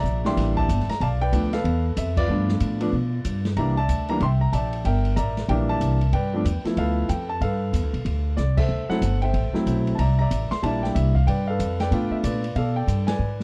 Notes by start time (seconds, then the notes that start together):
Already playing: D5 E5 A#5
0.04 A#1, hi-hat pedal
0.24 E3 G3 A#3 D4 E5 G5 C6, snare
0.37 A1, kick, snare, ride
0.57 D5 E5 A5, kick
0.69 G1, kick, hi-hat pedal, ride
0.80 snare
0.88 A#5, muted upright bass stroke, snare, ride
1.00 B1 D5 F5 A5, kick, ride
1.22 B4 D5 G5
1.32 D2 F3 A3 B3 D4, hi-hat pedal, ride
1.53 A4 B4 F5, snare, ride
1.64 E2, kick, ride
1.97 F2 E5, kick, hi-hat pedal, ride
2.17 F4 B4 D5, kick, crash
2.28 G2 F3 A3 B3 D4
2.49 snare
2.60 A2, kick, hi-hat pedal, ride
2.80 F3 A3 B3 D4, ride
2.92 B2, kick
3.25 G2, kick, hi-hat pedal, ride
3.45 snare, ride
3.57 C2 E3 G3 A#3 D4 D5 E5 A#5, kick, ride
3.77 D5 E5 A5
3.88 D2, kick, hi-hat pedal, ride
4.08 E3 G3 A#3 D4 A#5, ride
4.20 C2 E5 G5 C6, kick, ride
4.41 A#5
4.52 A#1 D5 E5 A5, kick, hi-hat pedal, ride
4.73 ride
4.85 G1 A#4 E5 G5, kick, ride
5.05 ride
5.16 A1 D5 E5 A#5, kick, hi-hat pedal, ride
5.37 snare, ride
5.48 A#1 E3 G3 A#3 D4 A#4 E5 G5, kick, ride
5.69 D5 E5 A5
5.81 C2, kick, hi-hat pedal, ride
6.01 ride
6.13 G2 B4 D5 G5, kick, ride
6.34 F3 A3 B3 D4
6.45 E2, kick, hi-hat pedal, ride
6.64 F3 A3 B3 E4, muted upright bass stroke, snare, ride
6.77 D2 A4 B4 F5, kick, ride
7.09 F2 G5, kick, hi-hat pedal, ride
7.29 A5
7.41 G2 A4 B4 F5, kick, ride
7.73 E2, kick, hi-hat pedal, ride
7.83 D2
7.93 B1, ride
8.05 D2, kick, ride
8.37 C2 D5, snare, hi-hat pedal
8.57 A4 C5 E5, kick, crash
8.69 D2
8.89 F#3 A3 C4 E4 A4 C5 F#5, muted upright bass stroke, snare
9.02 G1, kick, hi-hat pedal, ride
9.22 C5 E5 G5, ride
9.34 A1, kick, ride
9.53 F#3 A3 C4 E4, muted upright bass stroke, snare
9.66 B1, kick, hi-hat pedal, ride
9.87 ride
9.95 C2 A5 A#5, kick, ride
10.00 D5 E5
10.19 D5 E5 A#5
10.31 A1, kick, hi-hat pedal, ride
10.51 C6, muted upright bass stroke, snare, ride
10.62 A#1 G3 A#3 D4 E4 D5 E5 A5, kick, ride
10.83 G5, snare
10.95 C2 E5, kick, hi-hat pedal, ride
11.15 F5, kick
11.27 G2 B4 D5 G5, kick, ride
11.47 A4 B4 F5
11.59 F2, kick, hi-hat pedal, ride
11.80 B4 D5 G5, snare, ride
11.91 A2 A3 B3 D4 F4, kick, ride
12.11 E5, muted upright bass stroke
12.24 A#2 F4 B4 D5, kick, hi-hat pedal, ride
12.44 ride
12.55 B2 A4 D5 F5, kick, ride
12.76 D5 G5
12.87 G2, kick, hi-hat pedal, ride
13.07 B4 D5 G#5, snare, ride
13.19 G#2
13.40 snare